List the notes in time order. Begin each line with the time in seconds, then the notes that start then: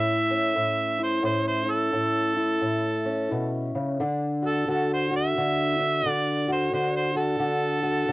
Already playing: A2 C#4 E4 E5
0.31 C#4
0.56 A2
0.99 E4
1.03 C5
1.23 A2 C#4 C5
1.48 C5
1.66 E4
1.71 A4
1.93 A2 E4
2.36 E4
2.61 A2
3.05 C#4
3.31 B2
3.75 C#3
4.00 D3 D4
4.42 F#4
4.46 A4
4.68 D3 F#4 A4
4.93 C5
5.11 F#4
5.16 E5
5.37 D3
5.79 D4
6.05 D3 D5
6.48 F#4
6.52 C5
6.73 D3 D4 C5
6.96 C5
7.15 F#4 A4
7.40 D3 F#4
7.83 F#4
8.09 D3